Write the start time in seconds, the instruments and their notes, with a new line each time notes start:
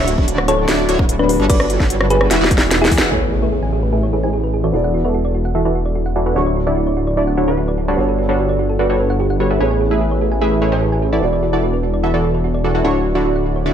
Already playing: detuned saw bass D1
0.08 synth arpeggio sound F#4, closed hi-hat
0.18 detuned saw bass D1, supersaw synth D3 D4 E4 F#4 D5, synth arpeggio sound D5, kick
0.28 synth arpeggio sound F#4, closed hi-hat
0.38 synth arpeggio sound F#5, cross-stick
0.48 synth arpeggio sound F#4, synth pluck A4 C#5, closed hi-hat
0.59 synth arpeggio sound C#5
0.68 detuned saw bass D1, supersaw synth D3 D4 E4 F#4 D5, synth arpeggio sound F#4, snare, closed hi-hat
0.79 synth arpeggio sound D5
0.89 detuned saw bass D1, supersaw synth D3 D4 E4 F#4 C#5, synth arpeggio sound F#4, closed hi-hat
0.99 detuned saw bass D1, supersaw synth D3 D4 F#4 B4, synth arpeggio sound F#5, kick
1.09 synth arpeggio sound F#4, closed hi-hat
1.19 synth pluck D4 B4, synth arpeggio sound C#5
1.29 synth arpeggio sound F#4, open hi-hat
1.40 detuned saw bass G1, supersaw synth G3 D4 F#4 A4 B4 C#5, synth arpeggio sound D5
1.50 synth arpeggio sound F#4, synth pluck B4 D5, kick, closed hi-hat, crash
1.60 synth arpeggio sound D5, cross-stick
1.70 synth arpeggio sound F#4, closed hi-hat
1.80 detuned saw bass G1, supersaw synth G3 D4 F#4 A4 B4 C#5, synth arpeggio sound A4, kick, snare
1.90 synth arpeggio sound F#4, closed hi-hat
2.01 synth arpeggio sound B4, cross-stick
2.10 synth arpeggio sound F#4, synth pluck G#4 B4, closed hi-hat
2.21 synth arpeggio sound D5, cross-stick
2.31 detuned saw bass E1, supersaw synth E3 E4 F#4 G#4 E5, synth arpeggio sound F#4, snare, closed hi-hat
2.41 detuned saw bass E1, supersaw synth E3 E4 F#4 G#4 D5, synth arpeggio sound B4, snare
2.51 synth arpeggio sound F#4, kick, closed hi-hat
2.58 synth arpeggio sound D5, snare
2.71 synth arpeggio sound F#4, snare, closed hi-hat
2.82 synth pluck E4 G#4, synth arpeggio sound F#5, snare
2.91 detuned saw bass E2, supersaw synth E3 E4 F#4 G#4 D5, synth arpeggio sound F#4, kick, open hi-hat
2.98 detuned saw bass E1, supersaw synth E3 E4 F#4 G#4 F#5, synth arpeggio sound B4, snare
3.10 detuned saw bass A1, supersaw synth A3 E4 B4 C#5, grand piano A3 B3 E4 G#4 C#5, synth arpeggio sound G#4, impact
3.22 synth arpeggio sound B4
3.32 synth arpeggio sound G#4
3.42 supersaw synth A3 E4 G#4 B4 E5, synth arpeggio sound C#5
3.52 synth arpeggio sound G#4
3.63 synth arpeggio sound G#5
3.73 synth arpeggio sound G#4
3.83 synth arpeggio sound B4
3.93 supersaw synth A3 E4 G#4 B4 E5, synth arpeggio sound G#4
4.03 synth arpeggio sound C#5
4.13 supersaw synth A3 E4 G#4 B4 C#5, synth arpeggio sound G#4
4.23 supersaw synth A3 E4 G#4 B4 C#5, synth arpeggio sound G#5
4.33 synth arpeggio sound G#4
4.44 synth arpeggio sound B4
4.54 synth arpeggio sound G#4
4.64 supersaw synth E3 E4 F#4 A4 D5, synth arpeggio sound C#5
4.72 detuned saw bass E1, grand piano B3 E4 F#4 A4 D5, synth arpeggio sound F#4
4.84 synth arpeggio sound F#5
4.94 synth arpeggio sound F#4
5.04 supersaw synth E3 E4 F#4 A4 D5, synth arpeggio sound B4
5.14 synth arpeggio sound F#4
5.25 synth arpeggio sound D5
5.35 synth arpeggio sound F#4
5.45 synth arpeggio sound F#5
5.55 supersaw synth E3 E4 F#4 A4 E5, synth arpeggio sound F#4
5.65 supersaw synth E3 E4 F#4 A4 D5, synth arpeggio sound B4
5.75 synth arpeggio sound F#4
5.86 synth arpeggio sound D5
5.95 synth arpeggio sound F#4
6.06 synth arpeggio sound F#5
6.16 supersaw synth E3 E4 F#4 A4 D5, synth arpeggio sound F#4
6.26 supersaw synth E3 E4 F#4 A4 F#5, synth arpeggio sound B4
6.34 detuned saw bass D1, supersaw synth D3 D4 E4 F#4 C#5, grand piano D4 E4 F#4 A4, synth arpeggio sound F#4
6.38 grand piano C#6
6.46 synth arpeggio sound D5
6.56 synth arpeggio sound F#4
6.67 supersaw synth D3 D4 E4 F#4 D5, synth arpeggio sound F#5
6.77 synth arpeggio sound F#4
6.87 synth arpeggio sound C#5
6.97 synth arpeggio sound F#4
7.07 synth arpeggio sound D5
7.17 supersaw synth D3 D4 E4 F#4 D5, synth arpeggio sound F#4
7.27 synth arpeggio sound F#5
7.37 supersaw synth D3 D4 E4 F#4 C#5, synth arpeggio sound F#4
7.48 supersaw synth D3 D4 E4 F#4 B4, synth arpeggio sound C#5
7.58 synth arpeggio sound F#4
7.68 synth arpeggio sound D5
7.78 synth arpeggio sound F#4
7.88 supersaw synth G3 D4 F#4 A4 B4 C#5, synth arpeggio sound F#5
7.96 detuned saw bass G1, grand piano B3 D4 F#4 A4 C#5, synth arpeggio sound F#4
8.09 synth arpeggio sound A4
8.19 synth arpeggio sound F#4
8.29 supersaw synth G3 D4 F#4 A4 B4 C#5, synth arpeggio sound B4
8.39 synth arpeggio sound F#4
8.49 synth arpeggio sound D5
8.59 synth arpeggio sound F#4
8.69 synth arpeggio sound A4
8.79 supersaw synth G3 D4 F#4 A4 B4 D5, synth arpeggio sound F#4
8.90 supersaw synth G3 D4 F#4 A4 B4 C#5, synth arpeggio sound B4
9.00 synth arpeggio sound B4
9.10 synth arpeggio sound F#5
9.20 synth arpeggio sound G4
9.30 synth arpeggio sound F#5
9.40 supersaw synth G3 D4 F#4 A4 B4 C#5, synth arpeggio sound G4
9.50 supersaw synth G3 D4 F#4 A4 B4 E5, synth arpeggio sound G4
9.58 detuned saw bass A1, supersaw synth A3 E4 G#4 B4 C#5, grand piano A3 B3 E4 G#4 C#5, synth arpeggio sound G#4
9.71 synth arpeggio sound G#5
9.81 synth arpeggio sound G#4
9.91 supersaw synth A3 E4 G#4 B4 E5, synth arpeggio sound B4
10.01 synth arpeggio sound G#4
10.11 synth arpeggio sound C#5
10.21 synth arpeggio sound G#4
10.32 synth arpeggio sound G#5
10.41 supersaw synth A3 E4 G#4 B4 E5, synth arpeggio sound G#4
10.52 synth arpeggio sound B4
10.62 supersaw synth A3 E4 G#4 B4 C#5, synth arpeggio sound G#4
10.72 supersaw synth A3 E4 G#4 B4 C#5, synth arpeggio sound C#5
10.82 synth arpeggio sound G#4
10.92 synth arpeggio sound G#5
11.02 synth arpeggio sound G#4
11.13 supersaw synth E3 E4 F#4 A4 D5, synth arpeggio sound B4
11.21 detuned saw bass E1, grand piano B3 E4 F#4 A4 D5, synth arpeggio sound F#4
11.33 synth arpeggio sound D5
11.43 synth arpeggio sound F#4
11.53 supersaw synth E3 E4 F#4 A4 D5, synth arpeggio sound F#5
11.63 synth arpeggio sound F#4
11.73 synth arpeggio sound B4
11.83 synth arpeggio sound F#4
11.94 synth arpeggio sound D5
12.04 supersaw synth E3 E4 F#4 A4 E5, synth arpeggio sound F#4
12.14 supersaw synth E3 E4 F#4 A4 D5, synth arpeggio sound F#5
12.24 synth arpeggio sound F#4
12.34 synth arpeggio sound B4
12.44 synth arpeggio sound F#4
12.54 synth arpeggio sound D5
12.64 supersaw synth E3 E4 F#4 A4 D5, synth arpeggio sound F#4
12.75 supersaw synth E3 E4 F#4 A4 F#5, synth arpeggio sound F#5
12.83 detuned saw bass D1, supersaw synth D3 D4 E4 F#4 C#5, grand piano D4 E4 F#4 A4 C#6, synth arpeggio sound F#4
12.95 synth arpeggio sound C#5
13.05 synth arpeggio sound F#4
13.15 supersaw synth D3 D4 E4 F#4 D5, synth arpeggio sound D5
13.25 synth arpeggio sound F#4
13.36 synth arpeggio sound F#5
13.46 synth arpeggio sound F#4
13.56 synth arpeggio sound C#5
13.66 supersaw synth D3 D4 E4 F#4 D5, synth arpeggio sound F#4